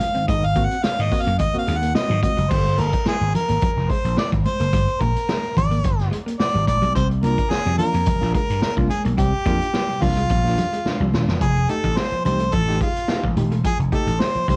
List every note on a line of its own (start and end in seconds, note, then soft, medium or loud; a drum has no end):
0.00 0.28 F5 medium
0.00 muted clean electric guitar stroke soft
0.00 closed hi-hat medium
0.00 high conga medium
0.15 0.28 G#2 medium
0.15 0.28 D#3 medium
0.15 0.22 C4 medium
0.15 closed hi-hat soft
0.28 0.65 G#1 loud
0.28 0.43 G#2 medium
0.28 0.43 D#3 medium
0.28 0.37 G#3 medium
0.28 0.47 D#5 loud
0.28 kick loud
0.28 closed hi-hat medium
0.28 muted conga medium
0.42 0.67 F5 loud
0.42 muted clean electric guitar stroke soft
0.56 0.64 A#3 medium
0.56 0.70 A#3 medium
0.56 0.70 C4 medium
0.56 0.70 F#4 loud
0.56 kick medium
0.56 closed hi-hat medium
0.56 muted conga medium
0.65 0.85 F#5 loud
0.71 0.76 C4 soft
0.71 0.76 F#4 soft
0.71 closed hi-hat medium
0.83 0.92 G#3 medium
0.83 0.90 C4 soft
0.83 0.90 F#4 soft
0.83 1.03 F5 loud
0.83 muted slap bass stroke soft
0.83 snare loud
0.83 high conga medium
0.98 1.12 G#2 medium
0.98 1.10 G#2 loud
0.98 1.12 D#3 medium
0.98 1.23 D#5 loud
0.98 muted clean electric guitar stroke soft
0.98 closed hi-hat soft
1.11 1.26 A#3 medium
1.11 1.26 C4 medium
1.11 1.26 F#4 medium
1.11 kick loud
1.11 open hi-hat loud
1.21 1.38 F5 loud
1.26 1.38 F#2 medium
1.26 1.34 A#3 medium
1.26 closed hi-hat medium
1.39 1.54 G#2 medium
1.39 1.54 D#3 medium
1.39 1.56 D#5 loud
1.39 kick loud
1.39 closed hi-hat medium
1.39 muted conga medium
1.54 1.67 A#3 medium
1.54 1.66 C4 medium
1.54 1.66 F#4 medium
1.54 muted slap bass stroke soft
1.54 closed hi-hat soft
1.59 1.79 F5 loud
1.67 1.92 D#2 medium
1.67 1.75 G#3 medium
1.67 1.73 C4 soft
1.67 1.73 F#4 soft
1.67 closed hi-hat medium
1.67 muted conga soft
1.78 1.95 F#5 loud
1.82 1.89 A#3 medium
1.82 closed hi-hat medium
1.95 2.09 C4 medium
1.95 2.10 F#4 medium
1.95 2.21 D#5 loud
1.95 snare loud
1.95 high conga medium
2.09 2.22 G#2 medium
2.09 2.21 G#2 loud
2.09 2.23 D#3 medium
2.09 2.17 F#3 medium
2.09 high conga medium
2.23 2.37 C4 medium
2.23 2.37 F#4 medium
2.23 2.52 D#5 loud
2.23 kick loud
2.23 closed hi-hat medium
2.23 high conga medium
2.37 2.49 F#1 medium
2.37 2.45 F#3 medium
2.37 closed hi-hat medium
2.50 2.75 G1 loud
2.50 2.59 G3 medium
2.50 2.81 C5 loud
2.50 kick loud
2.50 crash medium
2.50 muted conga medium
2.66 muted clean electric guitar stroke soft
2.66 closed hi-hat soft
2.78 2.91 G1 loud
2.78 2.86 A#3 medium
2.78 3.07 A#4 medium
2.78 closed hi-hat medium
2.78 muted conga medium
2.93 kick loud
2.93 closed hi-hat medium
3.06 3.14 G#3 medium
3.06 3.33 G#4 medium
3.06 muted slap bass stroke medium
3.06 snare loud
3.06 high conga medium
3.20 3.32 G#1 medium
3.20 muted clean electric guitar stroke soft
3.20 closed hi-hat soft
3.34 3.92 A#4 loud
3.34 closed hi-hat medium
3.34 low conga medium
3.49 3.60 G#1 medium
3.49 3.56 A#3 medium
3.49 closed hi-hat medium
3.61 muted slap bass stroke soft
3.61 kick loud
3.61 closed hi-hat medium
3.61 muted conga medium
3.61 low conga medium
3.77 3.88 F1 medium
3.77 snare soft
3.77 closed hi-hat soft
3.90 3.98 G#3 medium
3.90 4.18 C5 medium
3.90 kick medium
3.90 closed hi-hat medium
4.04 4.16 A#1 medium
4.04 closed hi-hat medium
4.17 4.25 G#3 medium
4.17 4.31 D5 medium
4.17 muted slap bass stroke soft
4.17 snare loud
4.17 high conga medium
4.32 4.44 G#1 loud
4.32 kick loud
4.32 closed hi-hat soft
4.32 high conga medium
4.45 5.03 C5 loud
4.45 muted clean electric guitar stroke soft
4.45 closed hi-hat medium
4.45 high conga medium
4.60 4.71 F#1 medium
4.60 4.67 A#3 medium
4.60 closed hi-hat medium
4.73 4.86 G1 loud
4.73 4.81 G3 medium
4.73 kick loud
4.73 closed hi-hat loud
4.73 muted conga medium
4.88 muted clean electric guitar stroke soft
4.88 closed hi-hat soft
5.01 5.14 A#1 medium
5.01 5.09 A#3 medium
5.01 5.57 A#4 medium
5.01 kick loud
5.01 closed hi-hat medium
5.01 muted conga medium
5.16 closed hi-hat medium
5.29 5.37 G#3 medium
5.29 snare loud
5.29 high conga medium
5.43 muted clean electric guitar stroke soft
5.43 closed hi-hat soft
5.57 5.81 G#1 medium
5.57 5.98 D5 medium
5.57 kick loud
5.57 closed hi-hat medium
5.57 low conga medium
5.71 5.78 A#3 medium
5.71 closed hi-hat medium
5.84 6.09 G1 loud
5.84 muted clean electric guitar stroke soft
5.84 kick loud
5.84 closed hi-hat medium
5.84 muted conga soft
5.98 6.09 C5 medium
5.98 snare soft
5.98 closed hi-hat soft
6.11 6.20 G#3 medium
6.11 closed hi-hat medium
6.11 muted conga soft
6.26 6.34 A#3 medium
6.26 closed hi-hat medium
6.40 6.66 D5 loud
6.40 snare loud
6.40 high conga medium
6.54 6.67 G#1 loud
6.54 6.62 G3 medium
6.54 closed hi-hat soft
6.54 high conga medium
6.67 6.80 A#1 medium
6.67 6.93 D5 loud
6.67 muted clean electric guitar stroke soft
6.67 kick medium
6.67 closed hi-hat medium
6.67 high conga medium
6.82 6.94 B1 medium
6.82 6.89 G3 medium
6.82 closed hi-hat medium
6.95 7.20 C2 loud
6.95 7.10 C3 medium
6.95 7.10 G3 medium
6.95 7.03 C4 medium
6.95 7.08 C5 loud
6.95 kick loud
6.95 closed hi-hat medium
6.95 muted conga medium
7.10 muted clean electric guitar stroke soft
7.10 closed hi-hat soft
7.23 7.36 C2 loud
7.23 7.31 A#3 medium
7.23 7.38 A#3 medium
7.23 7.37 D4 medium
7.23 7.37 F4 medium
7.23 7.52 A#4 loud
7.23 closed hi-hat medium
7.23 muted conga medium
7.38 7.43 D4 soft
7.38 7.43 F4 soft
7.38 kick loud
7.38 closed hi-hat medium
7.50 7.59 G#3 medium
7.50 7.57 D4 soft
7.50 7.57 F4 soft
7.50 7.78 G#4 loud
7.50 muted slap bass stroke medium
7.50 snare loud
7.50 high conga medium
7.65 7.77 F2 medium
7.65 7.79 C3 medium
7.65 7.79 G3 medium
7.65 muted clean electric guitar stroke soft
7.65 closed hi-hat soft
7.78 7.93 A#3 medium
7.78 7.93 D4 medium
7.78 7.93 F4 medium
7.78 8.30 A#4 loud
7.78 closed hi-hat medium
7.78 low conga medium
7.93 8.05 F2 medium
7.93 8.00 A#3 medium
7.93 closed hi-hat medium
8.06 8.21 C3 medium
8.06 8.21 G3 medium
8.06 muted slap bass stroke soft
8.06 kick loud
8.06 closed hi-hat medium
8.06 muted conga medium
8.06 low conga medium
8.21 8.33 A#1 medium
8.21 8.34 A#3 medium
8.21 8.33 D4 medium
8.21 8.33 F4 medium
8.21 snare soft
8.21 closed hi-hat soft
8.34 8.42 G#3 medium
8.34 8.40 D4 soft
8.34 8.40 F4 soft
8.34 8.60 A#4 loud
8.34 kick medium
8.34 closed hi-hat medium
8.34 muted conga soft
8.50 8.61 G2 medium
8.50 closed hi-hat medium
8.62 8.71 G#3 medium
8.62 8.75 A#4 loud
8.62 muted slap bass stroke soft
8.62 snare loud
8.62 high conga medium
8.77 8.89 C2 medium
8.77 8.90 A#3 medium
8.77 8.90 D4 medium
8.77 8.90 F4 loud
8.77 kick loud
8.77 closed hi-hat soft
8.77 high conga medium
8.90 9.03 G#4 medium
8.90 muted clean electric guitar stroke soft
8.90 closed hi-hat medium
8.90 high conga medium
9.05 9.17 B1 medium
9.05 9.17 C3 medium
9.05 9.17 G3 medium
9.05 9.12 A#3 medium
9.05 closed hi-hat medium
9.17 9.31 C2 loud
9.17 9.33 C3 medium
9.17 9.32 G3 medium
9.17 9.26 C4 medium
9.17 10.04 G4 loud
9.17 kick loud
9.17 closed hi-hat loud
9.17 muted conga medium
9.33 muted clean electric guitar stroke soft
9.46 9.59 F2 medium
9.46 9.54 G#3 medium
9.46 9.60 A#3 medium
9.46 9.60 D4 medium
9.46 9.60 F4 medium
9.46 kick loud
9.46 closed hi-hat medium
9.46 muted conga medium
9.61 9.66 D4 soft
9.61 9.66 F4 soft
9.61 closed hi-hat medium
9.74 9.82 G3 medium
9.74 snare loud
9.74 high conga medium
9.89 10.01 C3 medium
9.89 10.01 G3 medium
9.89 muted clean electric guitar stroke soft
10.01 10.26 C2 medium
10.01 10.16 A#3 medium
10.01 10.16 D4 medium
10.01 10.16 F4 medium
10.01 11.14 F4 loud
10.01 kick medium
10.01 open hi-hat medium
10.01 low conga medium
10.17 10.24 G#3 medium
10.17 closed hi-hat medium
10.29 10.54 A#1 loud
10.29 10.44 C3 medium
10.29 10.44 G3 medium
10.29 muted clean electric guitar stroke soft
10.29 kick loud
10.29 closed hi-hat medium
10.29 muted conga medium
10.44 10.57 A#3 medium
10.44 10.57 D4 medium
10.44 10.56 F4 medium
10.44 snare soft
10.58 10.66 G3 medium
10.58 10.64 D4 soft
10.58 10.63 F4 soft
10.58 closed hi-hat medium
10.58 muted conga soft
10.58 low conga medium
10.73 10.80 G#3 medium
10.73 closed hi-hat medium
10.85 11.00 D4 medium
10.85 11.00 F4 medium
10.85 snare medium
10.85 high conga medium
11.00 11.12 C2 medium
11.00 11.13 C3 medium
11.00 11.08 F3 medium
11.00 11.13 G3 medium
11.00 high conga medium
11.13 11.26 D#1 loud
11.13 11.28 D4 medium
11.13 11.28 F4 medium
11.13 muted clean electric guitar stroke soft
11.13 snare loud
11.13 high conga medium
11.28 11.40 E1 loud
11.28 11.36 F3 medium
11.28 snare loud
11.41 11.66 F1 loud
11.41 11.56 F3 medium
11.41 11.50 F3 medium
11.41 11.71 G#4 loud
11.41 kick loud
11.41 closed hi-hat loud
11.41 muted conga medium
11.56 muted clean electric guitar stroke soft
11.56 closed hi-hat soft
11.69 11.84 A3 medium
11.69 11.78 A3 medium
11.69 11.84 D#4 medium
11.69 11.84 G4 medium
11.69 11.99 A4 medium
11.69 closed hi-hat medium
11.69 muted conga soft
11.84 11.95 A1 medium
11.84 11.90 D#4 soft
11.84 11.89 G4 soft
11.84 kick medium
11.84 closed hi-hat medium
11.97 12.06 G#3 medium
11.97 12.03 D#4 soft
11.97 12.03 G4 soft
11.97 12.24 C5 loud
11.97 snare loud
11.97 high conga medium
12.11 12.25 F3 medium
12.11 muted slap bass stroke soft
12.11 muted clean electric guitar stroke soft
12.11 closed hi-hat soft
12.25 12.49 C2 medium
12.25 12.39 A3 medium
12.25 12.39 D#4 medium
12.25 12.40 G4 medium
12.25 12.55 C5 loud
12.25 closed hi-hat medium
12.25 low conga medium
12.39 12.47 A3 medium
12.39 closed hi-hat medium
12.52 12.77 A1 medium
12.52 12.68 F3 medium
12.52 12.81 A4 loud
12.52 kick loud
12.52 closed hi-hat medium
12.52 muted conga soft
12.52 low conga medium
12.67 12.80 A3 medium
12.67 12.80 D#4 medium
12.67 12.80 G4 medium
12.67 snare soft
12.67 closed hi-hat soft
12.81 12.89 G#3 medium
12.81 12.87 D#4 soft
12.81 13.33 F4 medium
12.81 12.87 G4 soft
12.81 kick medium
12.81 closed hi-hat medium
12.96 closed hi-hat medium
13.08 13.17 G#3 medium
13.08 13.23 D#4 medium
13.08 13.23 G4 medium
13.08 snare loud
13.08 high conga medium
13.23 13.35 A1 medium
13.23 13.36 F3 medium
13.23 kick medium
13.23 high conga medium
13.36 13.51 D#1 medium
13.36 13.51 D#4 medium
13.36 13.51 G4 medium
13.36 muted clean electric guitar stroke soft
13.36 closed hi-hat medium
13.36 high conga medium
13.51 13.63 E1 medium
13.51 13.59 A3 medium
13.51 closed hi-hat soft
13.64 13.79 F3 medium
13.64 13.73 F3 medium
13.64 13.78 G#4 loud
13.64 kick loud
13.64 closed hi-hat loud
13.64 muted conga medium
13.79 13.91 F1 loud
13.79 muted clean electric guitar stroke soft
13.79 closed hi-hat soft
13.92 14.07 A3 medium
13.92 14.01 A3 medium
13.92 14.06 D#4 medium
13.92 14.06 G4 medium
13.92 14.22 A4 loud
13.92 kick medium
13.92 closed hi-hat medium
13.92 muted conga medium
14.07 14.18 A1 medium
14.07 14.12 D#4 soft
14.07 14.12 G4 soft
14.07 closed hi-hat medium
14.20 14.29 G#3 medium
14.20 14.26 D#4 soft
14.20 14.26 G4 soft
14.20 14.48 C5 loud
14.20 snare loud
14.20 high conga medium
14.35 14.48 F3 medium
14.35 muted slap bass stroke soft
14.35 muted clean electric guitar stroke soft
14.35 closed hi-hat soft
14.48 14.56 C2 medium
14.48 14.56 A3 medium
14.48 14.56 D#4 medium
14.48 14.56 G4 medium
14.48 14.56 C5 loud
14.48 kick medium
14.48 closed hi-hat medium
14.48 low conga medium